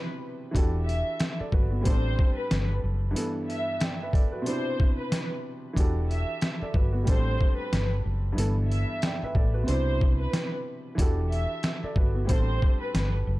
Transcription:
Already playing: B2 C3 D4 E4
0.51 E1 E3 D4 F#4, kick
0.56 G4 A4, closed hi-hat
0.86 E5, closed hi-hat
1.20 snare, closed hi-hat
1.40 A4 D5, muted fingered electric bass stroke
1.52 G1 F#4 B4, kick
1.71 B3 F#4
1.81 A2 G3 B3 C5
1.85 A1 D4 A4, kick, closed hi-hat
1.91 C4
2.19 kick
2.37 B4
2.51 G1, snare, closed hi-hat
2.84 F#1
3.11 G2 E3
3.15 B3 A4, closed hi-hat
3.50 E5, closed hi-hat
3.80 D5 G5, snare, closed hi-hat
4.02 B4 E5
4.13 A4 D5, kick, closed hi-hat
4.32 F#4 B4
4.42 B2 C3 C5
4.46 D4 E4, closed hi-hat
4.80 kick
4.99 B4
5.12 snare, closed hi-hat
5.73 E1 E3 D4 F#4, kick
5.77 G4 A4, closed hi-hat
6.10 E5, closed hi-hat
6.41 snare, closed hi-hat
6.62 A4 D5, muted fingered electric bass stroke
6.74 G1 F#4 B4, kick
6.93 B3 F#4
7.03 A2 G3 B3
7.07 A1 D4 A4 C5, kick, closed hi-hat
7.13 C4
7.41 kick
7.58 B4
7.73 G1, snare, closed hi-hat
8.05 F#1
8.32 G2 E3
8.37 G1 B3 A4, closed hi-hat
8.68 E5, closed hi-hat
9.02 D5 G5, snare, closed hi-hat
9.23 B4 E5, muted fingered electric bass stroke
9.35 A1 A4 D5, kick
9.54 F#4 B4
9.63 B2 C3
9.68 C2 D4 E4 C5, closed hi-hat
10.01 kick
10.20 B4
10.33 snare, closed hi-hat
10.95 E1 E3 D4 F#4, kick, closed hi-hat
11.00 G4 A4
11.30 E5, closed hi-hat
11.63 snare, closed hi-hat
11.83 A4 D5, muted fingered electric bass stroke
11.96 G1 F#4 B4, kick
12.15 B3 F#4
12.25 A2 G3 B3 C5
12.29 A1 D4 A4, kick, closed hi-hat
12.35 C4
12.62 kick
12.81 B4
12.94 G1, snare, closed hi-hat
13.27 F#1

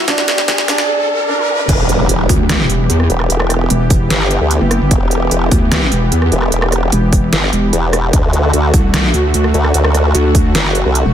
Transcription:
Already playing: D2 B2 F#3, riser
0.08 D4, kick, snare, closed hi-hat
0.18 snare
0.28 snare, closed hi-hat
0.38 snare
0.48 kick, snare, closed hi-hat
0.58 snare
0.68 D4, snare, open hi-hat
0.78 snare
1.29 D4
1.39 high tom
1.49 mid tom
1.59 mid tom
1.69 E1 E3 B3 G4, kick, closed hi-hat, crash, impact
1.89 closed hi-hat
2.09 E1, closed hi-hat
2.29 D2, kick, open hi-hat
2.49 snare, closed hi-hat
2.70 E1, closed hi-hat
2.90 E2, closed hi-hat
3.00 cross-stick
3.10 E1, closed hi-hat
3.20 cross-stick
3.30 E1, closed hi-hat
3.40 cross-stick
3.50 cross-stick, closed hi-hat
3.70 E1, closed hi-hat
3.90 kick, open hi-hat
4.10 G1, snare, closed hi-hat
4.31 closed hi-hat
4.41 D2
4.51 closed hi-hat
4.61 F#1
4.71 cross-stick, closed hi-hat
4.81 G1
4.91 E1, kick, closed hi-hat
5.11 closed hi-hat
5.31 E1, closed hi-hat
5.51 D2, kick, open hi-hat
5.72 snare, closed hi-hat
5.92 E1, closed hi-hat
6.12 E2, closed hi-hat
6.22 cross-stick
6.32 E1, closed hi-hat
6.42 cross-stick
6.52 E1, closed hi-hat
6.62 cross-stick
6.72 cross-stick, closed hi-hat
6.92 E1, closed hi-hat
7.13 kick, open hi-hat
7.33 G1, snare, closed hi-hat
7.53 E1, closed hi-hat
7.73 E1, closed hi-hat
7.93 cross-stick, closed hi-hat
8.13 D2 D3 A3 F#4, kick, closed hi-hat
8.33 closed hi-hat
8.53 D2, closed hi-hat
8.74 C2, kick, open hi-hat
8.94 snare, closed hi-hat
9.14 D2, closed hi-hat
9.34 D2, closed hi-hat
9.44 cross-stick
9.54 D2, closed hi-hat
9.64 cross-stick
9.74 D2, closed hi-hat
9.84 cross-stick
9.94 cross-stick, closed hi-hat
10.15 D2, closed hi-hat
10.35 kick, open hi-hat
10.55 F#1, snare, closed hi-hat
10.75 closed hi-hat
10.85 C2
10.95 closed hi-hat
11.05 E1

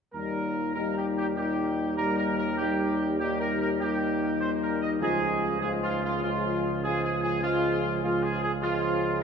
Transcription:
0.14 D#2 A#2 G3 D#4 A#4
0.75 A#2 G3 D#4 A#4
0.98 G4
1.18 G4
1.36 A#2 G3 D#4 G4
1.97 A#2 G3 D#4 A#4
2.18 A#4
2.38 A#4
2.57 A#2 G3 D#4 G4
3.19 A#2 G3 D#4 G4
3.40 A#4
3.61 A#4
3.80 A#2 G3 D#4 G4
4.41 A#2 C5
4.62 A#4
4.82 D#5
5.01 C#2 C#3 F3 G#3 F4 G#4
5.61 C#3 F3 G#3 F4 G#4
5.83 F4
6.05 F4
6.22 C#3 F3 G#3 F4
6.83 C#3 F3 G#3 F4 G#4
7.04 G#4
7.23 G#4
7.42 C#3 F3 G#3 F4
8.03 C#3 F3 G#3 F4
8.24 G#4
8.43 G#4
8.62 C#3 F3 G#3 F4

